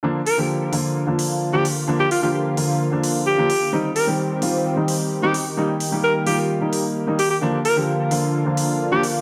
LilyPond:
<<
  \new Staff \with { instrumentName = "Alto saxophone" } { \time 4/4 \key bes \major \tempo 4 = 130 r8 bes'16 r2 r8 g'16 r8 | r16 g'16 f'16 f'16 r2 g'4 | r8 bes'16 r2 r8 g'16 r8 | r4 bes'16 r16 g'16 r4. r16 g'16 g'16 |
r8 bes'16 r2 r8 g'16 r8 | }
  \new Staff \with { instrumentName = "Analog synth pad" } { \time 4/4 \key bes \major << { <d f'>1~ | <d f'>1 | <ees g'>1~ | <ees g'>1 |
<d f'>1 | } \\ { bes1~ | bes1 | c'1 | bes1~ |
bes1 | } >> }
  \new Staff \with { instrumentName = "Grand piano" } { \clef bass \time 4/4 \key bes \major <d f bes d'>16 r8 <d f bes g'>8. <d f bes f'>8. <d f bes d'>4 <d f bes d'>16 r8 | <d f bes d'>16 r8 <d f bes g'>8. <d f bes f'>8. <d f bes d'>4 <d f bes d'>16 r8 | <ees g c' ees'>16 r8 <ees g c' g'>8. <ees g c' f'>8. <ees g c' ees'>4 <ees g c' ees'>16 r8 | <ees g bes ees'>16 r8 <ees g bes g'>8. <ees g bes f'>8. <ees g bes ees'>4 <ees g bes ees'>16 r8 |
<d f bes d'>16 r8 <d f bes g'>8. <d f bes f'>8. <d f bes d'>4 <d f bes d'>16 r8 | }
  \new DrumStaff \with { instrumentName = "Drums" } \drummode { \time 4/4 r8 hho8 r8 hho8 r8 hho8 r8 hho8 | r8 hho8 r8 hho8 r8 hho8 r8 hho8 | r8 hho8 r8 hho8 r8 hho8 r8 hho8 | r8 hho8 r8 hho8 r8 hho8 r8 hho8 |
r8 hho8 r8 hho8 r8 hho8 r8 hho8 | }
>>